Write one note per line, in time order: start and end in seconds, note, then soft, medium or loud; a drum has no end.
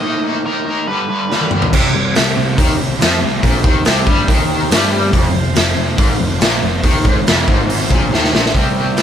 0.00 0.22 D#3 medium
0.00 0.23 A#3 medium
0.00 0.87 A#3 medium
0.00 0.23 D#4 medium
0.00 0.21 D#5 medium
0.05 0.88 D#4 medium
0.05 0.88 G4 medium
0.05 0.88 A#4 medium
0.23 0.43 D#3 medium
0.23 0.45 A#3 medium
0.23 0.45 D#4 medium
0.45 0.64 D#3 medium
0.45 0.65 A#3 medium
0.45 0.65 D#4 medium
0.45 0.85 A#4 medium
0.65 0.86 D#3 medium
0.65 0.87 A#3 medium
0.65 0.86 D#4 medium
0.87 1.07 G2 medium
0.87 1.08 D3 medium
0.87 1.08 G3 loud
0.87 1.73 B3 medium
0.87 1.73 D4 medium
0.87 1.71 G4 medium
0.87 1.48 B4 medium
0.87 1.73 B4 medium
1.08 1.28 G2 medium
1.08 1.28 D3 medium
1.08 1.28 G3 medium
1.29 1.50 G2 medium
1.29 1.50 D3 medium
1.29 1.51 G3 medium
1.29 snare medium
1.41 high tom soft
1.51 1.72 G2 medium
1.51 1.72 D3 medium
1.51 1.72 G3 medium
1.51 mid tom medium
1.62 floor tom medium
1.72 1.93 C2 medium
1.72 1.93 C3 medium
1.72 5.09 C4 medium
1.72 5.09 G4 medium
1.72 5.09 C5 medium
1.72 5.10 E5 medium
1.72 kick medium
1.72 crash loud
1.94 2.15 C2 medium
1.94 2.11 C3 medium
2.15 2.36 C2 medium
2.15 2.32 C3 medium
2.15 snare loud
2.15 open hi-hat soft
2.36 2.57 C2 medium
2.36 2.54 C3 medium
2.58 2.78 D#2 medium
2.58 2.77 D#3 loud
2.58 kick loud
2.58 open hi-hat medium
2.78 3.00 C2 medium
2.78 2.96 C3 medium
3.00 3.21 F2 medium
3.00 3.21 F3 loud
3.00 snare loud
3.00 open hi-hat medium
3.22 3.42 C2 medium
3.22 3.39 C3 medium
3.42 3.63 A#1 medium
3.42 3.63 A#2 loud
3.42 kick medium
3.42 open hi-hat soft
3.63 3.84 D#2 medium
3.63 3.84 D#3 medium
3.63 kick loud
3.85 4.06 C2 medium
3.85 4.06 C3 loud
3.85 snare medium
3.85 open hi-hat medium
4.06 4.27 G2 medium
4.06 4.27 G3 loud
4.06 kick medium
4.28 4.68 D#2 medium
4.28 4.70 D#3 loud
4.28 kick loud
4.28 open hi-hat medium
4.70 5.10 G2 medium
4.70 5.12 G3 loud
4.70 snare loud
4.70 open hi-hat medium
5.11 5.33 F1 medium
5.11 5.32 F2 loud
5.11 kick loud
5.11 open hi-hat medium
5.15 8.52 F3 medium
5.15 8.51 C4 medium
5.15 8.51 F4 medium
5.15 8.51 C5 medium
5.33 5.54 F1 medium
5.33 5.51 F2 medium
5.54 5.75 F1 medium
5.54 5.72 F2 medium
5.54 snare loud
5.54 open hi-hat medium
5.75 5.97 F1 medium
5.75 5.93 F2 medium
5.97 6.18 G#1 medium
5.97 6.18 G#2 loud
5.97 kick loud
5.97 open hi-hat medium
6.19 6.39 F1 medium
6.19 6.36 F2 medium
6.40 6.61 A#1 medium
6.40 6.61 A#2 loud
6.40 snare loud
6.40 open hi-hat medium
6.62 6.82 F1 medium
6.62 6.79 F2 medium
6.84 7.03 D#2 medium
6.84 7.05 D#3 medium
6.84 kick medium
6.84 open hi-hat soft
7.05 7.24 G#1 medium
7.05 7.26 G#2 medium
7.05 kick loud
7.27 7.46 F1 medium
7.27 7.47 F2 loud
7.27 snare loud
7.27 open hi-hat soft
7.48 7.87 G#1 medium
7.48 7.90 G#2 loud
7.48 kick medium
7.70 open hi-hat medium
7.90 8.10 A#1 medium
7.90 8.11 A#2 loud
7.90 kick loud
8.11 8.31 D#2 medium
8.11 8.32 D#3 loud
8.11 snare medium
8.24 snare medium
8.33 8.53 A#1 medium
8.33 8.53 A#2 loud
8.33 snare loud
8.46 snare medium
8.54 8.98 C2 medium
8.54 9.02 C3 medium
8.54 9.02 G3 medium
8.54 9.02 C4 medium
8.54 kick medium
8.54 open hi-hat soft
8.97 9.02 G5 medium
8.97 snare medium
8.97 open hi-hat soft